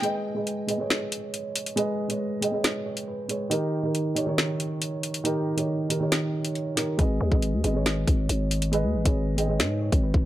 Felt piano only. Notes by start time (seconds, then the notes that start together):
0.02 G#3 G#4 B4 D#5
0.35 G#3 G#4 B4 D#5
0.67 G#3 G#4 B4 D#5
0.78 G#3 G#4 B4 C#5
1.76 G#3 G#4 B4 D#5
2.09 G#3 G#4 B4 C#5
2.41 G#3 G#4 B4 D#5 G5
2.52 G#3 G#4 B4 D#5
2.86 C#5
3.08 B4
3.28 G#3 G#4 B4 C#5
3.50 D#3 D#4 G4 A#4
3.83 D#3 D#4 G4 A#4
4.15 D#3 D#4 G4 C#5
4.26 D#3 D#4 G4 C#5
5.24 D#3 D#4 G4 A#4
5.56 D#3 D#4 G4 C#5
5.89 D#3 D#4 G4 A#4
6.00 D#3 D#4 G4 C#5
6.76 D#3 D#4 G4 A#4
6.98 G#3 G#4 B4 D#5
7.30 G#3 G#4 B4 D#5
7.63 G#3 G#4 B4 D#5
7.74 G#3 G#4 B4 C#5
8.72 G#3 G#4 B4 D#5
9.04 G#3 G#4 B4 C#5
9.37 G#3 G#4 B4 D#5 G5
9.47 G#3 G#4 B4 D#5
9.82 C#5
10.03 B4